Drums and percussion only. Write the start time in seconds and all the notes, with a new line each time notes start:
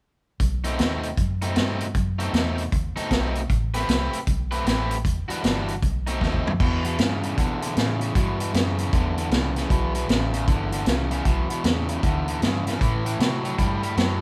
0.40 kick, closed hi-hat
0.64 closed hi-hat
0.79 snare, closed hi-hat
1.03 closed hi-hat
1.17 kick, closed hi-hat
1.42 closed hi-hat
1.56 snare, closed hi-hat
1.80 closed hi-hat
1.95 kick, closed hi-hat
2.20 closed hi-hat
2.34 snare, closed hi-hat
2.58 closed hi-hat
2.72 kick, closed hi-hat
2.97 closed hi-hat
3.11 kick, snare, closed hi-hat
3.35 closed hi-hat
3.50 kick, closed hi-hat
3.74 snare, closed hi-hat
3.89 snare, closed hi-hat
4.13 closed hi-hat
4.27 kick, closed hi-hat
4.52 closed hi-hat
4.66 snare, closed hi-hat
4.91 closed hi-hat
5.05 kick, closed hi-hat
5.30 closed hi-hat
5.44 snare, closed hi-hat
5.68 closed hi-hat
5.82 kick, closed hi-hat
6.07 closed hi-hat
6.21 kick, snare
6.34 kick
6.47 floor tom
6.60 kick, crash
6.84 closed hi-hat
6.98 snare, closed hi-hat
7.23 closed hi-hat
7.38 kick, closed hi-hat
7.62 closed hi-hat
7.77 snare, closed hi-hat
8.01 closed hi-hat
8.15 kick, closed hi-hat
8.40 closed hi-hat
8.54 snare, closed hi-hat
8.78 closed hi-hat
8.93 kick, closed hi-hat
9.18 closed hi-hat
9.31 snare, closed hi-hat
9.56 snare, closed hi-hat
9.70 kick, closed hi-hat
9.95 closed hi-hat
10.09 snare, closed hi-hat
10.34 closed hi-hat
10.48 kick, closed hi-hat
10.72 closed hi-hat
10.86 snare, closed hi-hat
11.11 closed hi-hat
11.25 kick, closed hi-hat
11.50 closed hi-hat
11.64 snare, closed hi-hat
11.89 closed hi-hat
12.03 kick, closed hi-hat
12.28 closed hi-hat
12.42 snare, closed hi-hat
12.67 snare, closed hi-hat
12.81 kick, closed hi-hat
13.06 closed hi-hat
13.20 snare, closed hi-hat
13.45 closed hi-hat
13.59 kick, closed hi-hat
13.83 closed hi-hat
13.97 snare, closed hi-hat